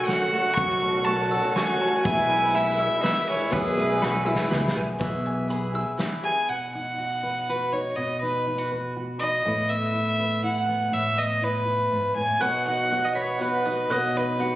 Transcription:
Already playing: B1 B2 C#3 F#3 A3 C#4 F#4 A4 C#5
0.06 F#3 A3 C#4 F#4 A4 C#5 F#5 C#6, snare, ride
0.32 F#3 A3 C#4 F#4 A4 C#5 A5
0.54 B1 B2 F#3 A3 C#4 F#4 A4 C#5 F#5 C#6, kick, ride, tambourine
0.82 F#3 A3 C#4 A4 C#5 A5, ride
1.05 F#3 A3 C#4 F#4 A4 C#5 A5 C#6, ride
1.31 F#3 A3 C#4 A4 C#5 E6, tambourine
1.55 F#3 A3 C#4 F#4 A4 G#5 C#6, snare, ride
1.80 F#3 A3 C#4 F#4 A4 C#5 A5
2.04 B1 B2 E3 G#3 B3 E4 G#4 B4 E5 G#5, kick, ride, tambourine
2.08 B2
2.29 G#3 B3 E4 B4 E5 G#5
2.53 E3 G#3 B3 E4 G#4 B4 E5 B5, ride
2.78 G#3 B3 E4 B4 E5 E6, tambourine
2.99 E3 G#3 B3 D#4 E4 E5
3.03 B3 E4 G#4 B4 E5 B5, snare, ride
3.28 G#3 B3 E4 B4 C#5 E5 G#5
3.50 B1 B2 E3 G#3 B3 E4 G#4 B4 E5, kick, ride, tambourine
3.77 G#3 B3 E4 B4 E5 G#5, ride, tambourine
4.00 E3 G#3 B3 E4 F#4 G#4 B4 C#5 B5, snare
4.25 G#3 B3 E4 G#4 B4 E5 E6, tambourine
4.35 snare
4.49 C#2 E3 G#3 B3 E4 G#4 B4 E5 B5, snare
4.65 snare, tambourine
4.74 B1 G#3 B3 E4 G#4 B4 E5 G#5
4.89 tambourine
4.99 B1 B2 E3 B3 E4 G#4 E5, kick, closed hi-hat
5.26 G#5
5.48 E3 B3 E4 G#4 B5, closed hi-hat
5.73 B3 E4 G#4 E6
5.97 E3 B3 E4 G#4 B5, snare, closed hi-hat
6.24 B3 E4 G#4 G#5
6.49 B2 F#5
6.75 D#4 F#5
6.98 F#4
7.23 B4
7.49 F#4 B4
7.72 D#4 C#5
7.95 B2 D#5
8.21 D#4 B4
8.47 D#4
8.58 F#4
8.72 B4
8.97 F#4
9.19 D#4 D#5
9.45 A2 A3 B3 E4 B4
9.69 B3 E5
9.94 E4
10.20 B4
10.44 E4 F#5
10.69 B3
10.93 A2 E5
11.18 B3 D#5
11.42 E4 B4
11.68 E4
11.92 G#2
12.16 A2 G#5
12.40 B2 F#3 B3 D#4 F#4 B4 F#5
12.66 D#4 D#5 F#5
12.91 F#3 B3 D#4 F#4 F#5
13.05 D#5
13.15 B4 C#5 B5
13.39 F#3 B3 D#4 F#4 B4 F#5
13.65 B3 D#4 F#4 D#5
13.90 B2 F#3 B3 D#4 F#4 B4 D#5
14.15 D#4 B4 D#5
14.39 F#3 B3 D#4 F#4 F#5

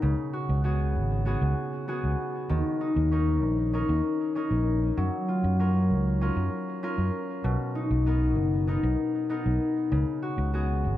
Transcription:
Already playing: F#3 B3 D#4 A#4
0.02 C#2 C#3
0.33 F#4
0.49 C#2
0.64 B3 F#4 G#4
0.96 G#1
1.26 B3 F#4 G#4
1.42 C#2
1.88 B3 F#4 G#4
2.04 C#2
2.49 D#2 D#3
2.81 D#4
2.96 D#2
3.11 C#4 D#4 A#4
3.43 A#1
3.73 C#4 D#4 A#4
3.89 D#2
4.35 C#4 D#4 A#4
4.51 A#1
4.97 F#2 F#3
5.28 F4
5.44 F#2
5.59 C#4 F4 A#4
5.90 C#2
6.21 C#4 F4 A#4
6.36 F#2
6.83 C#4 F4 A#4
6.98 F#2
7.44 B1 B2
7.75 D#4
7.91 B1
8.06 B3 D#4 A#4
8.37 F#1
8.67 B3 D#4 A#4
8.83 B1
9.29 B3 D#4 A#4
9.46 B1
9.92 C#2 C#3
10.22 F#4
10.38 C#2
10.53 B3 F#4 G#4
10.85 G#1

